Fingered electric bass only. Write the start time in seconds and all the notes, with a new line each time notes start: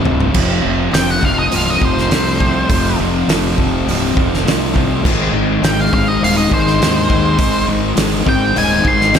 0.05 C1
0.35 F1
0.65 F1
0.93 F1
1.23 F1
1.53 C1
1.82 F1
2.12 C2
2.70 F1
2.99 F1
3.28 F1
3.59 F1
3.87 C1
4.17 F1
4.45 C2
5.05 G#1
5.33 G#1
5.62 G#1
5.93 G#1
6.22 D#1
6.51 G#1
6.81 D#2
7.39 G#1
7.68 G#1
7.97 G#1
8.27 G#1
8.56 D#1
8.85 G#1
9.15 D#2